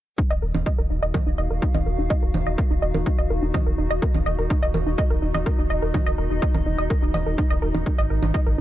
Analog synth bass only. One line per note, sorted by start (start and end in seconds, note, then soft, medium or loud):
0.31 0.40 D#1 medium
0.42 0.52 D#1 medium
0.54 0.64 D#1 medium
0.79 0.88 D#1 medium
0.90 1.00 D#1 medium
1.02 1.12 D#1 medium
1.26 1.36 D#1 medium
1.38 1.48 D#1 medium
1.50 1.60 D#1 medium
1.75 1.84 D#1 medium
1.86 1.96 D#1 loud
1.98 2.08 D#1 medium
2.23 2.32 D#1 medium
2.34 2.44 D#1 medium
2.47 2.56 D#1 medium
2.70 2.80 D#1 medium
2.82 2.92 D#1 medium
2.95 3.04 D#1 medium
3.18 3.28 D#1 medium
3.30 3.40 D#1 loud
3.42 3.52 D#1 medium
3.66 3.76 D#1 medium
3.78 3.88 D#1 loud
3.90 4.00 D#1 medium
4.14 4.24 D#1 medium
4.26 4.36 D#1 medium
4.38 4.48 D#1 medium
4.62 4.72 D#1 medium
4.74 4.84 D#1 medium
4.86 4.96 D#1 medium
5.10 5.20 D#1 medium
5.22 5.32 D#1 medium
5.35 5.44 D#1 medium
5.59 5.68 D#1 medium
5.70 5.80 D#1 loud
5.83 5.92 D#1 medium
6.07 6.16 D#1 medium
6.18 6.28 D#1 medium
6.31 6.40 D#1 medium
6.55 6.64 D#1 medium
6.66 6.76 D#1 medium
6.79 6.88 D#1 medium
7.03 7.12 D#1 medium
7.14 7.24 D#1 medium
7.27 7.36 D#1 medium
7.51 7.60 D#1 medium
7.62 7.72 D#1 medium
7.75 7.84 D#1 medium
7.99 8.08 G#1 medium
8.10 8.20 G#1 medium
8.23 8.32 G#1 medium
8.47 8.56 G#1 medium